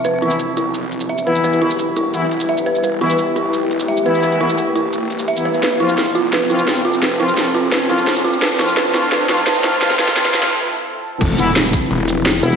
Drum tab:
CC |----------------|----------------|----------------|----------------|
HH |x-x-x-x-x-x-x-x-|x-x-x-x-x-x-x-x-|x-x-x-x-x-x-x-x-|x-x-x-x-x-x-x-x-|
SH |x--xx-x-x-xx-x-x|xx-xx-x-x-xx-x-x|x--xx-x-x-xx-x-x|xx-xx-x-x-xx-x-x|
SD |----------------|----------------|----------------|----------------|
BD |----------------|----------------|----------------|----------------|

CC |----------------|----------------|----------------|----------------|
HH |x-x-x-x-x-x-x-x-|x-x-x-x-x-x-x-x-|x-x-x-x-x-x-x-x-|x-x-x-x---------|
SH |x--xx-x-x-xx-x-x|xx-xx-x-x-xx-x-x|x--xx-x-x-xx-x-x|xx-xx-x---------|
SD |o---o---o---o---|o---o---o---o---|o-o-o-o-o-o-o-o-|oooooooo--------|
BD |----------------|----------------|----------------|----------------|

CC |x---------------|
HH |x-x-x-x-x-x-x-x-|
SH |--x---x---x---xx|
SD |----o-------o---|
BD |o-----o---------|